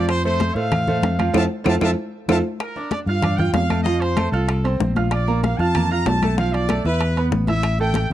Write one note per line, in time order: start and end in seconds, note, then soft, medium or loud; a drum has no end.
0.00 0.50 F2 medium
0.00 0.19 F3 medium
0.00 0.19 F4 medium
0.00 0.19 F5 medium
0.08 0.23 C5 loud
0.08 high bongo medium
0.08 high timbale loud
0.08 claves medium
0.24 0.51 A3 medium
0.24 0.51 A4 medium
0.24 0.54 C5 loud
0.24 0.51 C5 medium
0.24 high bongo soft
0.24 high conga soft
0.40 high bongo medium
0.40 high conga loud
0.40 high timbale medium
0.55 0.99 A2 medium
0.55 0.82 A3 medium
0.55 0.82 A4 medium
0.55 0.82 C5 medium
0.55 1.34 F5 loud
0.55 high bongo soft
0.55 high conga soft
0.72 high bongo medium
0.72 high conga soft
0.72 low conga medium
0.72 high timbale loud
0.72 claves medium
0.87 1.13 A3 medium
0.87 1.14 A4 medium
0.87 1.14 C5 medium
0.87 high bongo soft
0.87 high conga soft
0.87 low conga medium
1.03 1.32 F2 medium
1.03 high bongo medium
1.03 low bongo medium
1.03 high conga medium
1.03 high timbale medium
1.19 1.32 F3 medium
1.19 1.32 F4 medium
1.19 1.32 F5 medium
1.19 high conga medium
1.19 high timbale medium
1.19 claves medium
1.33 1.46 F2 loud
1.33 1.44 F4 medium
1.33 1.44 A4 medium
1.33 1.44 C5 medium
1.33 1.43 E5 loud
1.33 1.43 F5 medium
1.33 1.44 A5 medium
1.33 high bongo loud
1.33 high conga loud
1.33 high timbale loud
1.33 claves loud
1.64 1.77 F2 medium
1.64 1.75 F4 loud
1.64 1.75 A4 loud
1.64 1.75 C5 loud
1.64 1.75 E5 medium
1.64 1.75 F5 medium
1.64 1.75 A5 medium
1.64 high bongo loud
1.64 high conga loud
1.64 high timbale loud
1.64 claves loud
1.81 1.93 F2 loud
1.81 1.91 F4 medium
1.81 1.92 A4 loud
1.81 1.91 C5 medium
1.81 1.90 E5 loud
1.81 1.90 F5 medium
1.81 1.90 A5 medium
1.81 high bongo medium
1.81 high conga medium
1.81 high timbale loud
1.81 claves loud
2.28 2.40 F2 medium
2.28 2.39 F4 loud
2.28 2.39 A4 loud
2.28 2.39 C5 loud
2.28 2.38 E5 medium
2.28 2.38 F5 loud
2.28 2.38 A5 medium
2.28 high bongo loud
2.28 high conga loud
2.28 high timbale loud
2.28 claves loud
2.60 2.90 A#4 medium
2.60 high bongo medium
2.60 high conga soft
2.60 high timbale medium
2.60 claves medium
2.76 3.02 D4 medium
2.76 3.02 D5 medium
2.76 3.02 D6 medium
2.76 high bongo soft
2.76 high conga soft
2.91 2.99 D5 medium
2.91 high bongo medium
2.91 high conga medium
2.91 high timbale medium
3.06 3.51 G2 medium
3.06 3.21 F4 medium
3.06 3.37 F5 loud
3.06 3.21 F5 medium
3.06 3.21 F6 medium
3.06 high bongo soft
3.06 high conga soft
3.22 3.36 D4 medium
3.22 3.36 D5 medium
3.22 3.37 D6 medium
3.22 high bongo medium
3.22 high conga soft
3.22 low conga medium
3.22 high timbale medium
3.22 claves medium
3.37 3.65 F4 medium
3.37 3.65 F5 medium
3.37 3.54 G5 loud
3.37 3.65 F6 medium
3.37 high bongo soft
3.37 high conga soft
3.37 low conga medium
3.52 4.27 F2 medium
3.52 3.83 F5 loud
3.52 high bongo medium
3.52 low bongo medium
3.52 high conga medium
3.52 high timbale medium
3.52 low timbale medium
3.70 3.83 A3 medium
3.70 3.83 A4 medium
3.70 3.83 A5 medium
3.70 high conga medium
3.70 high timbale medium
3.70 claves medium
3.83 4.11 F3 medium
3.83 4.12 F4 medium
3.83 3.99 D#5 loud
3.83 4.12 F5 medium
3.83 high bongo medium
3.83 high conga soft
4.00 4.32 C5 loud
4.00 high bongo soft
4.00 high conga soft
4.00 high timbale medium
4.17 4.30 A3 medium
4.17 4.30 A4 medium
4.17 4.31 A5 medium
4.17 high bongo medium
4.17 high conga loud
4.17 high timbale loud
4.17 claves medium
4.32 4.77 C2 medium
4.32 4.59 F4 medium
4.32 4.77 A4 medium
4.32 4.59 F5 medium
4.32 4.59 F6 medium
4.32 high bongo soft
4.32 high conga soft
4.48 high bongo medium
4.48 high conga soft
4.48 high timbale loud
4.48 claves medium
4.64 4.91 C4 medium
4.64 4.90 C5 medium
4.64 4.91 C6 medium
4.64 high conga soft
4.64 high timbale medium
4.80 5.53 A#1 medium
4.80 high bongo medium
4.80 low bongo medium
4.80 high conga medium
4.96 5.22 F4 medium
4.96 5.22 F5 medium
4.96 5.22 F6 medium
4.96 high bongo soft
4.96 high conga medium
4.96 high timbale medium
5.11 5.41 D5 medium
5.11 high bongo medium
5.11 high conga soft
5.11 high timbale loud
5.11 claves medium
5.28 5.53 A#3 medium
5.28 5.54 A#4 medium
5.28 5.54 A#5 medium
5.28 high bongo soft
5.28 high conga soft
5.43 5.58 F5 medium
5.43 high bongo medium
5.43 high conga medium
5.43 high timbale medium
5.58 6.03 F2 medium
5.58 5.72 F4 medium
5.58 5.72 F5 medium
5.58 5.90 A5 loud
5.58 5.73 F6 medium
5.58 high bongo soft
5.58 high conga soft
5.75 5.88 A#3 medium
5.75 5.88 A#4 medium
5.75 5.89 A#5 medium
5.75 high bongo medium
5.75 high conga soft
5.75 low conga medium
5.75 high timbale loud
5.75 claves medium
5.90 6.17 F4 medium
5.90 6.17 F5 medium
5.90 6.06 A#5 loud
5.90 6.17 F6 medium
5.90 high bongo soft
5.90 high conga soft
6.06 6.79 B1 medium
6.06 6.38 A5 loud
6.06 high bongo medium
6.06 low bongo medium
6.06 high conga medium
6.06 high timbale medium
6.06 low timbale medium
6.22 6.36 A3 medium
6.22 6.36 A4 medium
6.22 6.36 A5 medium
6.22 high conga medium
6.22 high timbale medium
6.22 claves medium
6.38 6.64 F3 medium
6.38 6.64 F4 medium
6.38 6.53 F5 loud
6.38 6.64 F5 medium
6.38 high bongo medium
6.38 high conga soft
6.53 6.85 D5 loud
6.53 high bongo soft
6.53 high conga soft
6.53 high timbale medium
6.69 6.83 A3 medium
6.69 6.83 A4 medium
6.69 6.83 A5 medium
6.69 high bongo medium
6.69 high conga medium
6.69 high timbale medium
6.69 claves medium
6.85 7.29 E2 loud
6.85 7.11 E4 medium
6.85 7.29 B4 loud
6.85 7.11 E5 medium
6.85 7.11 E6 medium
6.85 high bongo soft
6.85 high conga soft
7.01 high bongo medium
7.01 high conga soft
7.01 high timbale loud
7.01 claves medium
7.16 7.43 B3 medium
7.16 7.43 B4 medium
7.16 7.43 B5 medium
7.16 high conga soft
7.16 high timbale medium
7.31 8.05 A1 medium
7.31 high bongo medium
7.31 low bongo medium
7.31 high conga medium
7.47 7.74 E4 medium
7.47 7.77 E5 loud
7.47 7.74 E5 medium
7.47 7.75 E6 medium
7.47 high bongo soft
7.47 high conga medium
7.47 high timbale medium
7.63 high bongo medium
7.63 high conga soft
7.63 high timbale loud
7.63 claves medium
7.79 8.05 A3 medium
7.79 8.06 A4 medium
7.79 8.09 G5 medium
7.79 8.06 A5 medium
7.79 high bongo soft
7.79 high conga soft
7.94 high bongo medium
7.94 high conga loud
7.94 high timbale medium